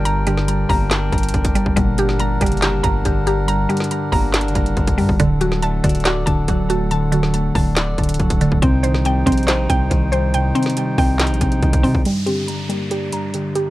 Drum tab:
HH |x-----------x-----------x-----------o-----------x-----------x--x--x--x--x-----x-----x-----------|x-----------x-----------x-----------x--x--x--x--x-----------x-----------x-----------x-----------|x-----------x---x---x---x-----------o-----------x---x---x---x-----x-----x-----x-----o-----------|x-----------x-----------x-----------x--x--x--x--x-----------x-----------x-----------x-----------|
CP |------------------------------------------------x-----------------------------------------------|------------------------------------------------x-----------------------------------------------|------------------------------------------------x-----------------------------------------------|------------------------------------------------x-----------------------------------------------|
SD |------------------o-----------------------------o-----------------------------------------------|------------------o-----------------------------o-----------------------------------------------|------------------o-----------------------------o-----------------------------------------------|------------------o-----------------------------o-----------------------------------------------|
BD |------------------------------------o-----------------------o-----------o-----o-----------o-----|o-----------------------------------o-----------------------o-----------o-----------------------|------------------------------------o-----------------------o-----------o-----o-----------o-----|o-----------------------------------o-----------------------o-----------o-----------------------|

HH |x-----------x-----------x-----------o-----------x-----------x--x--x--x--x-----x-----x-----------|x-----------x-----------x-----------x--x--x--x--x-----------x-----------x-----------x-----------|x-----------x---x---x---x-----------o-----------x---x---x---x-----x-----x-----x-----o-----------|x-----------x-----------x-----------x-----------x-----------x-----------x-----------x-----------|
CP |------------------------------------------------x-----------------------------------------------|------------------------------------------------x-----------------------------------------------|------------------------------------------------x-----------------------------------------------|------------------------------------------------------------------------------------------------|
SD |------------------o-----------------------------o-----------------------------------------------|------------------o-----------------------------o-----------------------------------------------|------------------o-----------------------------o-----------------------------------------------|------------------------------------------------------------------------------------------------|
BD |------------------------------------o-----------------------o-----------o-----o-----------o-----|o-----------------------------------o-----------------------o-----------o-----------------------|------------------------------------o-----------------------o-----------o-----o-----------o-----|------------------------------------------------------------------------------------------------|